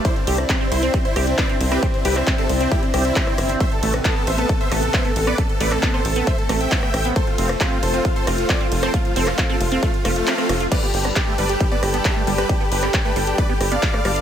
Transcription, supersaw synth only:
\new Staff \with { instrumentName = "Supersaw synth" } { \time 4/4 \key g \mixolydian \tempo 4 = 135 <e' c''>16 c'16 c'16 r16 c'16 c'16 <e' c''>16 c'16 c'16 <e' c''>16 c'16 c'16 <b' d''>16 c'16 c'16 <g' b'>16 | c'16 c'16 <g' b'>16 c'16 c'16 <c' a'>16 c'16 c'16 <e' g'>16 c'16 c'16 <c' e'>4 r16 | <c'' e''>16 a'16 a'16 r16 a'16 a'16 <c'' e''>16 a'16 a'16 <c'' e''>16 a'16 a'16 <c'' e''>16 a'16 a'16 <b' d''>16 | a'16 a'16 <b' d''>16 a'16 a'16 <a' c''>16 a'16 a'16 <c'' e''>16 a'16 a'16 <e'' g''>4 r16 |
<a' c''>16 f'16 f'16 r16 f'16 f'16 <a' c''>16 f'16 f'16 <a' c''>16 f'16 f'16 <f' d''>16 f'16 f'16 <a' c''>16 | f'16 f'16 <a' c''>16 f'16 f'16 <f' a'>16 f'16 f'16 <a f'>16 f'16 f'16 <a f'>4 r16 | <b' d''>16 g'16 g'16 r16 g'16 g'16 <b' d''>16 g'16 g'16 <b' d''>16 g'16 g'16 <g' e''>16 g'16 g'16 <g' b'>16 | g'16 g'16 <g' b'>16 g'16 g'16 <g' b'>16 g'16 g'16 <b' d''>16 g'16 g'16 <d'' f''>4 r16 | }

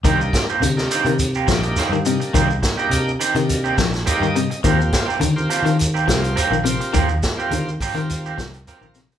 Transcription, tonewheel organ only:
\new Staff \with { instrumentName = "Tonewheel organ" } { \time 4/4 \key ees \major \tempo 4 = 104 << { r1 | r2. ees''4 | r1 | r1 | } \\ { <bes d' ees' g'>8. r8 <bes d' ees' g'>8. r8 <bes d' ees' g'>8 r8 <bes d' ees' g'>8~ | <bes d' ees' g'>16 r8 <bes d' ees' g'>8 r8 <bes d' ees' g'>8. r8 <bes ees' g' d''>8 r8 | <bes c' f' g'>8. r8 <bes c' f' g'>8. r8 <bes c' f' g'>8 r8 <bes c' f' g'>8~ | <bes c' f' g'>16 r8 <bes c' f' g'>8 r8 <bes c' f' g'>8. r8 <bes c' f' bes'>8 r8 | } >> }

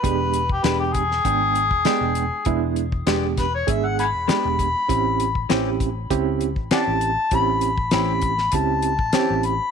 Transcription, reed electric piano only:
\new Staff \with { instrumentName = "Reed electric piano" } { \time 4/4 \key a \major \tempo 4 = 99 <gis b d' g'>8 r8 <gis b d' g'>8 r8 <gis b d' g''>8 r8 <gis b d' g''>8 r8 | <gis b d' e'>8 r8 <gis b d' g'>8 r8 <gis b d' gis'>8 r8 <gis b d' g'>8 r8 | <bis cis' e' g'>8 r8 <bis cis' e' g'>8 r8 <bis cis' e' g'>8 r8 <bis cis' e' g'>8 r8 | <bis cis' e' g'>8 r8 <bis cis' e' g'>8 r8 <bis cis' e' g'>8 r8 <bis cis' e' g'>8 r8 | }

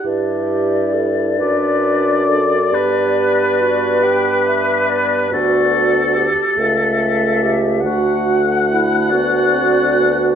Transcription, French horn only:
\new Staff \with { instrumentName = "French horn" } { \time 6/8 \key g \major \tempo 4. = 47 e'4. d'4. | b2. | b4 r8 a4. | a4. b8 c'8 b8 | }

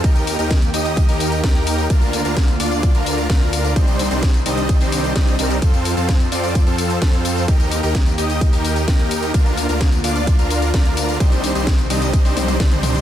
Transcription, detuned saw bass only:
\new Staff \with { instrumentName = "Detuned saw bass" } { \clef bass \time 4/4 \key bes \major \tempo 4 = 129 ees,8. ees,8. ees,8. ees,8. ees,4 | d,8. d,8. d,8. d,8. d,4 | c,8. c,8. c,8. c,8. c,8 c,8 | f,8. f,8. f,8. f,8. f,4 |
ees,8. ees,8. ees,8. ees,8. ees,4 | d,8. d,8. d,8. d,8. d,4 | c,8. c,8. c,8. c,8. c,4 | }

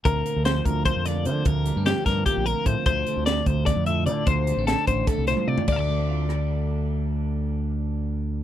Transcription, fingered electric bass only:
\new Staff \with { instrumentName = "Fingered electric bass" } { \clef bass \time 7/8 \key d \minor \tempo 4 = 149 d,8 r16 d,8. d,8. f,8. d8 | d,8. g,8 r16 g,8 r16 bes,,8 r16 a,16 r16 | d,8 r16 d,8. d,8. f,8. d8 | d,8. a,,8 r16 a,,8 r16 c,8 r16 c16 r16 |
d,2.~ d,8~ | d,2.~ d,8 | }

